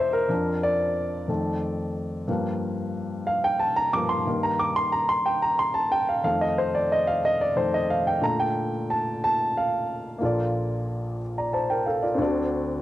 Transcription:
0.00 0.26 E2 soft
0.00 0.26 E3 soft
0.00 0.26 A#3 medium
0.00 0.14 C5 medium
0.00 0.32 D5 medium
0.00 0.32 D#5 medium
0.00 0.32 E5 medium
0.13 0.59 A#4 medium
0.29 1.25 F2 medium
0.29 1.25 F3 soft
0.29 1.25 D4 medium
0.63 2.24 D5 medium
1.28 2.24 F2 soft
1.28 2.24 D#3 soft
1.28 2.24 A3 medium
2.28 3.92 G2 soft
2.28 3.92 F3 soft
2.28 3.93 A#3 medium
3.27 3.44 F5 medium
3.44 3.61 G5 medium
3.60 3.75 A5 medium
3.76 3.94 A#5 medium
3.93 4.23 G2 soft
3.93 4.23 F3 soft
3.93 4.23 A#3 soft
3.93 4.10 D6 medium
4.09 4.43 C6 medium
4.26 5.21 G2 soft
4.26 5.21 D#3 soft
4.26 5.22 A#3 medium
4.43 4.60 A#5 medium
4.59 4.76 D6 medium
4.76 4.93 C6 medium
4.92 5.09 A#5 medium
5.09 5.26 C6 medium
5.26 5.42 G5 medium
5.42 5.57 A#5 medium
5.59 5.76 C6 medium
5.74 5.92 A5 medium
5.92 6.08 G5 medium
6.09 6.23 F5 medium
6.24 7.19 F2 medium
6.24 7.19 D#3 soft
6.24 7.20 A3 medium
6.24 6.41 F5 medium
6.41 6.58 D#5 medium
6.58 6.73 C5 medium
6.75 6.90 D5 medium
6.92 7.08 D#5 medium
7.07 7.23 F5 medium
7.25 7.41 D#5 medium
7.41 7.58 D5 medium
7.56 7.86 F2 soft
7.56 7.86 D#3 soft
7.56 7.86 A3 medium
7.56 7.74 C5 medium
7.74 7.91 D#5 medium
7.90 8.07 F5 medium
8.07 8.24 G5 medium
8.21 10.16 A#2 medium
8.21 10.17 D3 soft
8.21 10.17 A3 medium
8.21 8.39 A#5 medium
8.40 8.70 G5 medium
8.90 9.22 A5 medium
9.24 9.54 A5 medium
9.57 10.18 F5 medium
10.18 12.16 A#1 soft
10.18 12.16 A#2 medium
10.18 12.14 A#3 medium
10.18 11.18 F4 soft
10.23 11.19 A4 soft
10.23 11.20 D5 medium
11.38 11.53 D5 soft
11.38 11.53 A#5 medium
11.53 11.69 C5 soft
11.53 11.69 A5 medium
11.70 11.86 A#4 soft
11.70 11.86 G5 medium
11.86 12.02 A4 soft
11.86 12.02 F5 medium
12.03 12.16 F4 soft
12.03 12.20 D5 medium
12.15 12.82 D2 medium
12.15 12.82 D3 medium
12.15 12.82 C4 medium
12.15 12.25 F4 soft
12.19 12.82 A4 medium
12.19 12.82 D5 medium
12.24 12.82 F#4 medium

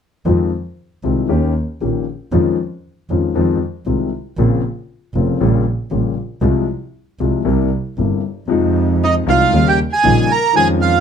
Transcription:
0.25 0.48 F2 medium
0.25 0.48 D#3 soft
0.25 0.48 F3 medium
0.25 0.48 G#3 soft
0.25 0.48 C4 soft
0.25 0.48 F4 medium
1.04 1.26 C2 soft
1.04 1.26 C3 soft
1.04 1.26 D#3 soft
1.04 1.26 G#3 soft
1.04 1.26 C4 soft
1.04 1.26 F4 soft
1.29 1.51 D#2 medium
1.29 1.52 D#2 medium
1.29 1.52 D#3 medium
1.29 1.51 A#3 soft
1.29 1.51 C#4 soft
1.29 1.52 G4 medium
1.81 2.03 A#1 soft
1.81 2.03 A#2 soft
1.81 2.03 D#3 soft
1.81 2.03 A#3 soft
1.81 2.03 C#4 soft
1.81 2.03 G4 soft
2.32 2.55 F2 medium
2.32 2.55 D#3 medium
2.32 2.54 F3 medium
2.32 2.55 G#3 soft
2.32 2.54 C#4 soft
2.32 2.55 F4 medium
3.10 3.31 F2 soft
3.10 3.32 F2 soft
3.10 3.32 D#3 soft
3.10 3.32 F3 soft
3.10 3.32 G#3 soft
3.10 3.32 C#4 soft
3.10 3.32 F4 soft
3.35 3.57 F2 medium
3.35 3.57 D#3 medium
3.35 3.57 F3 medium
3.35 3.57 G#3 soft
3.35 3.57 C4 soft
3.35 3.57 F4 medium
3.86 4.08 C2 soft
3.86 4.08 C3 soft
3.86 4.08 D#3 soft
3.86 4.08 G#3 soft
3.86 4.08 C4 soft
3.86 4.08 F4 soft
4.37 4.59 A#1 medium
4.37 4.60 A#1 medium
4.37 4.60 A#2 medium
4.37 4.60 C#3 medium
4.37 4.60 A#3 soft
4.37 4.60 C4 soft
4.37 4.60 F4 medium
5.15 5.36 F1 soft
5.15 5.37 F1 soft
5.15 5.37 F2 soft
5.15 5.36 C#3 soft
5.15 5.37 A#3 soft
5.15 5.37 C4 soft
5.15 5.37 F4 soft
5.40 5.62 A#1 medium
5.40 5.62 A#2 medium
5.40 5.62 C#3 medium
5.40 5.62 G3 medium
5.40 5.62 A#3 medium
5.40 5.62 F4 medium
5.91 6.13 A#1 soft
5.91 6.13 A#2 soft
5.91 6.13 C#3 soft
5.91 6.13 G3 soft
5.91 6.13 A#3 soft
5.91 6.13 F4 soft
6.41 6.64 C2 medium
6.41 6.64 C3 medium
6.41 6.63 F3 soft
6.41 6.64 G#3 soft
6.41 6.64 F4 medium
7.20 7.41 C2 soft
7.20 7.42 C2 soft
7.20 7.42 C3 soft
7.20 7.42 F3 soft
7.20 7.42 G#3 soft
7.20 7.42 F4 soft
7.45 7.67 C2 medium
7.45 7.67 C3 medium
7.45 7.67 G3 soft
7.45 7.67 A#3 soft
7.45 7.67 E4 medium
7.98 8.20 G1 soft
7.98 8.20 G2 soft
7.98 8.20 C3 soft
7.98 8.20 G3 soft
7.98 8.20 A#3 soft
7.98 8.20 E4 soft
8.48 9.23 F2 medium
8.48 9.22 C3 medium
8.48 9.23 F3 medium
8.48 9.23 G#3 medium
8.48 9.24 D#4 medium
9.04 9.15 D#4 medium
9.04 9.15 D#5 medium
9.27 9.49 C2 medium
9.27 9.49 C3 medium
9.27 9.49 F3 medium
9.27 9.49 G#3 medium
9.27 9.49 D#4 medium
9.27 9.64 F4 medium
9.27 9.68 F5 medium
9.52 9.74 D#2 medium
9.52 9.75 D#2 medium
9.52 9.75 C#3 medium
9.52 9.75 D#3 medium
9.52 9.75 G3 medium
9.52 9.75 A#3 medium
9.52 9.75 D#4 medium
9.67 9.79 G4 medium
9.67 9.80 G5 medium
9.93 10.28 G#4 medium
9.93 10.32 G#5 medium
10.04 10.26 A#1 medium
10.04 10.26 A#2 medium
10.04 10.26 C#3 medium
10.04 10.26 G3 soft
10.04 10.26 A#3 medium
10.04 10.26 D#4 medium
10.30 10.54 A#4 medium
10.30 10.55 A#5 medium
10.53 11.00 F2 medium
10.53 11.00 D#3 medium
10.53 11.00 F3 medium
10.53 11.00 G#3 medium
10.53 11.00 C#4 medium
10.53 10.68 G#4 medium
10.53 10.68 G#5 medium
10.57 11.00 F4 medium
10.81 11.00 F4 medium
10.81 11.00 F5 medium

